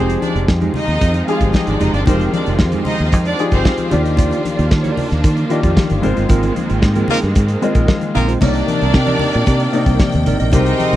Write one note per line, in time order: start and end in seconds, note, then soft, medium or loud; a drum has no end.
0.00 0.15 F1 medium
0.00 3.89 D#3 medium
0.00 0.64 F3 medium
0.00 6.00 F3 medium
0.00 0.20 G#3 medium
0.00 3.89 G#3 medium
0.00 3.88 C4 medium
0.00 0.20 D#4 medium
0.00 0.64 D#4 medium
0.00 8.38 F4 medium
0.00 0.21 G4 medium
0.00 0.64 G4 medium
0.00 0.65 G#4 medium
0.10 closed hi-hat medium
0.22 0.32 D4 medium
0.22 0.32 D5 medium
0.22 closed hi-hat medium
0.22 high conga medium
0.35 0.45 F1 medium
0.35 0.46 G#3 soft
0.35 0.46 D#4 medium
0.35 0.45 G4 medium
0.35 closed hi-hat soft
0.48 0.68 F2 loud
0.48 kick loud
0.48 snare loud
0.48 muted conga soft
0.61 0.73 G#3 medium
0.61 0.74 D#4 medium
0.61 0.74 G4 medium
0.61 closed hi-hat soft
0.61 high conga medium
0.74 0.85 G#3 medium
0.74 1.25 D#4 medium
0.74 0.85 D#4 medium
0.74 0.85 G4 medium
0.74 1.25 D#5 loud
0.74 open hi-hat medium
0.74 low conga medium
0.88 0.98 D#2 medium
0.88 snare soft
0.88 closed hi-hat soft
1.01 1.21 F2 medium
1.01 muted clean electric guitar stroke soft
1.01 kick loud
1.01 closed hi-hat medium
1.01 muted conga soft
1.14 muted clean electric guitar stroke medium
1.14 closed hi-hat soft
1.14 muted conga soft
1.27 1.79 F3 medium
1.27 1.40 G#3 medium
1.27 1.41 D#4 medium
1.27 1.79 D#4 medium
1.27 1.49 F4 medium
1.27 1.79 G4 medium
1.27 1.40 G#4 medium
1.27 1.80 G#4 medium
1.27 1.49 F5 medium
1.27 closed hi-hat medium
1.41 1.51 G1 medium
1.41 1.52 G#3 medium
1.41 1.52 D#4 medium
1.41 1.51 G4 medium
1.41 kick medium
1.41 closed hi-hat soft
1.54 1.65 D#4 medium
1.54 1.65 D#5 medium
1.54 muted clean electric guitar stroke soft
1.54 kick loud
1.54 snare loud
1.54 muted conga soft
1.54 high conga medium
1.67 1.77 G#1 medium
1.67 1.78 G#3 soft
1.67 1.78 D4 medium
1.67 1.78 D#4 medium
1.67 1.77 G4 medium
1.67 1.78 D5 medium
1.67 closed hi-hat soft
1.67 muted conga soft
1.67 high conga medium
1.80 1.90 F1 medium
1.80 1.93 G#3 medium
1.80 1.93 D#4 medium
1.80 1.92 D#4 medium
1.80 1.92 G4 medium
1.80 1.92 D#5 loud
1.80 closed hi-hat medium
1.80 low conga medium
1.93 2.03 G1 medium
1.93 2.05 D4 medium
1.93 2.05 D5 medium
1.93 muted clean electric guitar stroke medium
1.93 closed hi-hat soft
2.06 2.27 F1 loud
2.06 2.75 F3 medium
2.06 2.31 G#3 medium
2.06 2.17 C4 medium
2.06 2.31 D#4 medium
2.06 2.75 D#4 medium
2.06 2.75 G4 medium
2.06 2.32 G4 loud
2.06 2.76 A#4 medium
2.06 2.17 C5 loud
2.06 kick loud
2.06 closed hi-hat medium
2.06 muted conga soft
2.06 low conga medium
2.20 closed hi-hat soft
2.20 muted conga soft
2.33 2.44 D4 medium
2.33 2.44 D5 medium
2.33 closed hi-hat medium
2.33 high conga medium
2.46 2.61 F1 medium
2.46 2.57 G#3 medium
2.46 2.57 D#4 medium
2.46 2.56 G4 medium
2.46 closed hi-hat soft
2.59 2.79 F2 medium
2.59 kick loud
2.59 snare loud
2.72 2.84 G#3 medium
2.72 2.85 D#4 medium
2.72 2.85 G4 medium
2.72 closed hi-hat soft
2.72 muted conga soft
2.72 high conga medium
2.85 2.96 G#3 medium
2.85 2.96 D#4 medium
2.85 3.08 D#4 medium
2.85 2.97 G4 medium
2.85 3.08 D#5 medium
2.85 open hi-hat medium
2.85 low conga medium
2.98 3.13 D#2 medium
2.98 closed hi-hat soft
3.11 3.32 F2 loud
3.11 muted clean electric guitar stroke medium
3.11 kick loud
3.11 closed hi-hat medium
3.25 3.37 D4 medium
3.25 3.37 D5 loud
3.25 muted clean electric guitar stroke medium
3.25 closed hi-hat soft
3.39 3.90 F3 medium
3.39 3.91 D#4 medium
3.39 3.91 G4 medium
3.39 3.91 G#4 medium
3.39 closed hi-hat medium
3.51 3.62 G1 medium
3.51 3.90 C4 loud
3.51 3.90 C5 loud
3.51 muted clean electric guitar stroke soft
3.51 kick medium
3.51 closed hi-hat soft
3.65 kick loud
3.65 snare loud
3.65 muted conga soft
3.65 high conga medium
3.78 muted clean electric guitar stroke medium
3.78 closed hi-hat soft
3.78 muted conga soft
3.78 high conga medium
3.91 4.32 D#2 loud
3.91 4.77 D#3 medium
3.91 8.38 D#3 medium
3.91 6.02 A#3 medium
3.91 4.77 D4 medium
3.91 6.02 D4 medium
3.91 4.04 F4 medium
3.91 4.77 F4 medium
3.91 4.04 G4 medium
3.91 4.77 G4 loud
3.91 4.04 D5 medium
3.91 closed hi-hat medium
3.91 low conga medium
4.04 4.16 F4 medium
4.04 4.15 G4 medium
4.04 4.15 D#5 medium
4.04 closed hi-hat soft
4.17 4.42 F4 medium
4.17 4.43 G4 medium
4.17 4.43 D5 loud
4.17 kick loud
4.17 closed hi-hat medium
4.17 muted conga soft
4.17 low conga medium
4.31 closed hi-hat soft
4.31 muted conga soft
4.44 muted clean electric guitar stroke soft
4.44 closed hi-hat medium
4.44 high conga medium
4.57 4.68 D#2 loud
4.57 4.68 F4 soft
4.57 4.68 G4 medium
4.57 4.68 D5 medium
4.57 closed hi-hat soft
4.71 4.91 D#3 loud
4.71 kick loud
4.71 snare loud
4.71 muted conga soft
4.83 4.96 F4 medium
4.83 4.96 G4 medium
4.83 4.97 D5 medium
4.83 closed hi-hat soft
4.83 muted conga soft
4.83 high conga medium
4.97 5.08 F4 medium
4.97 5.08 G4 medium
4.97 5.08 D5 medium
4.97 open hi-hat medium
4.97 low conga medium
5.11 5.21 D#2 medium
5.11 snare soft
5.11 closed hi-hat soft
5.24 5.44 D#3 loud
5.24 muted clean electric guitar stroke soft
5.24 kick loud
5.24 closed hi-hat medium
5.37 muted clean electric guitar stroke medium
5.37 closed hi-hat soft
5.37 muted conga soft
5.50 6.01 D#3 medium
5.50 6.02 D4 medium
5.50 5.63 F4 medium
5.50 6.01 F4 medium
5.50 5.63 G4 medium
5.50 6.02 G4 medium
5.50 5.63 D#5 medium
5.50 closed hi-hat medium
5.63 5.73 F2 medium
5.63 5.75 F4 medium
5.63 5.74 G4 medium
5.63 5.74 D5 medium
5.63 kick medium
5.63 closed hi-hat soft
5.77 kick loud
5.77 snare loud
5.77 muted conga soft
5.77 high conga medium
5.90 6.01 G1 loud
5.90 muted clean electric guitar stroke soft
5.90 closed hi-hat soft
5.90 high conga medium
6.02 6.14 G#1 loud
6.02 6.87 G#3 medium
6.02 8.39 G#3 medium
6.02 8.39 A#3 medium
6.02 6.16 C4 medium
6.02 8.39 C4 medium
6.02 6.88 F4 medium
6.02 6.16 F4 medium
6.02 6.88 A#4 medium
6.02 6.15 A#4 medium
6.02 6.88 C5 loud
6.02 closed hi-hat medium
6.02 low conga medium
6.16 6.27 G1 medium
6.16 6.27 C4 medium
6.16 6.27 F4 medium
6.16 6.26 C5 medium
6.16 closed hi-hat soft
6.29 6.50 G#1 loud
6.29 6.54 C4 medium
6.29 6.54 F4 medium
6.29 6.54 A#4 loud
6.29 kick loud
6.29 closed hi-hat medium
6.29 muted conga soft
6.29 low conga medium
6.43 closed hi-hat soft
6.43 muted conga soft
6.55 muted clean electric guitar stroke medium
6.55 closed hi-hat medium
6.55 high conga medium
6.69 6.80 G#1 medium
6.69 6.80 C4 medium
6.69 6.80 F4 medium
6.69 6.80 A#4 medium
6.69 closed hi-hat soft
6.82 7.02 G#2 loud
6.82 kick loud
6.82 snare loud
6.82 muted conga soft
6.95 7.08 C4 medium
6.95 7.09 F4 medium
6.95 7.09 A#4 medium
6.95 closed hi-hat soft
6.95 high conga medium
7.08 7.18 A#3 loud
7.08 7.19 C4 medium
7.08 7.18 D#4 loud
7.08 7.18 F4 loud
7.08 7.20 F4 medium
7.08 7.18 A#4 loud
7.08 7.20 A#4 medium
7.08 open hi-hat medium
7.08 low conga medium
7.22 7.33 G2 loud
7.22 snare soft
7.22 closed hi-hat soft
7.35 7.55 G#2 loud
7.35 muted clean electric guitar stroke soft
7.35 kick loud
7.35 closed hi-hat medium
7.35 muted conga soft
7.48 muted clean electric guitar stroke medium
7.48 closed hi-hat soft
7.61 8.13 G#3 medium
7.61 7.75 C4 medium
7.61 7.75 F4 medium
7.61 8.14 F4 medium
7.61 8.14 A#4 medium
7.61 7.75 C5 medium
7.61 8.14 D#5 medium
7.61 closed hi-hat medium
7.75 7.85 A#1 medium
7.75 7.86 C4 medium
7.75 7.86 F4 medium
7.75 7.85 A#4 medium
7.75 kick loud
7.75 closed hi-hat soft
7.88 kick loud
7.88 snare loud
7.88 muted conga soft
7.88 high conga medium
8.01 muted clean electric guitar stroke soft
8.01 closed hi-hat soft
8.01 muted conga soft
8.15 8.35 A#1 loud
8.15 8.32 A#3 medium
8.15 8.28 C4 medium
8.15 8.32 D#4 medium
8.15 8.32 F4 medium
8.15 8.28 F4 medium
8.15 8.32 A#4 loud
8.15 8.28 A#4 medium
8.15 closed hi-hat medium
8.15 low conga medium
8.28 8.39 C4 medium
8.28 8.39 F4 medium
8.28 8.38 C5 medium
8.28 closed hi-hat soft
8.41 8.61 C2 loud
8.41 9.09 C3 medium
8.41 10.96 C3 medium
8.41 10.51 D#3 medium
8.41 10.23 A#3 medium
8.41 9.10 A#3 medium
8.41 10.51 A#3 medium
8.41 10.23 D4 loud
8.41 10.23 D#4 medium
8.41 8.66 D#4 medium
8.41 9.10 D#4 medium
8.41 10.23 G4 medium
8.41 10.23 A#4 medium
8.41 8.66 A#4 medium
8.41 8.48 C#5 medium
8.41 10.23 D5 loud
8.41 10.51 D5 medium
8.41 8.67 D5 medium
8.41 10.96 G5 loud
8.41 kick loud
8.41 crash loud
8.41 muted conga soft
8.41 low conga medium
8.49 9.13 D5 medium
8.54 closed hi-hat soft
8.54 muted conga soft
8.68 muted clean electric guitar stroke soft
8.68 closed hi-hat medium
8.68 high conga medium
8.82 8.92 C2 medium
8.82 8.92 D#4 soft
8.82 8.92 A#4 medium
8.82 8.92 D5 medium
8.82 closed hi-hat soft
8.94 9.14 C3 loud
8.94 muted clean electric guitar stroke soft
8.94 kick loud
8.94 snare loud
9.07 9.19 D#4 medium
9.07 9.20 A#4 medium
9.07 9.20 D5 medium
9.07 closed hi-hat soft
9.07 muted conga soft
9.07 high conga medium
9.19 9.31 D#4 medium
9.19 9.31 A#4 medium
9.19 9.31 D5 medium
9.19 open hi-hat medium
9.19 low conga medium
9.33 9.45 A#2 medium
9.33 closed hi-hat soft
9.46 9.67 C3 loud
9.46 muted clean electric guitar stroke soft
9.46 kick loud
9.46 closed hi-hat medium
9.46 muted conga soft
9.60 muted clean electric guitar stroke soft
9.60 closed hi-hat soft
9.73 10.24 C3 medium
9.73 10.25 A#3 medium
9.73 9.86 D#4 medium
9.73 10.25 D#4 medium
9.73 9.86 A#4 medium
9.73 10.25 D5 medium
9.73 9.86 D#5 medium
9.73 closed hi-hat medium
9.86 9.97 C2 medium
9.86 9.97 D#4 medium
9.86 9.97 A#4 medium
9.86 9.97 D5 medium
9.86 kick loud
9.86 closed hi-hat soft
10.00 kick loud
10.00 snare loud
10.00 high conga medium
10.12 10.24 D#2 loud
10.12 muted clean electric guitar stroke medium
10.12 closed hi-hat medium
10.12 muted conga soft
10.12 high conga medium
10.26 10.37 G#1 medium
10.26 10.39 D#4 medium
10.26 10.39 A#4 medium
10.26 10.39 D5 medium
10.26 closed hi-hat medium
10.26 low conga medium
10.40 10.50 A#1 medium
10.40 10.51 D#4 medium
10.40 10.50 A#4 medium
10.40 10.50 D#5 medium
10.40 closed hi-hat medium
10.52 10.73 C2 loud
10.52 10.96 C3 medium
10.52 10.96 D#3 medium
10.52 10.96 G#3 medium
10.52 10.96 C4 medium
10.52 10.77 D#4 medium
10.52 10.96 D#4 loud
10.52 10.96 G4 medium
10.52 10.78 G4 loud
10.52 10.96 G#4 medium
10.52 10.96 A#4 medium
10.52 10.96 C5 loud
10.52 10.78 C5 loud
10.52 10.96 D#5 loud
10.52 kick loud
10.52 closed hi-hat medium
10.52 low conga medium
10.66 closed hi-hat soft
10.80 closed hi-hat medium
10.80 high conga medium
10.92 10.96 C2 medium
10.92 10.96 G4 medium
10.92 10.96 C5 medium
10.92 closed hi-hat soft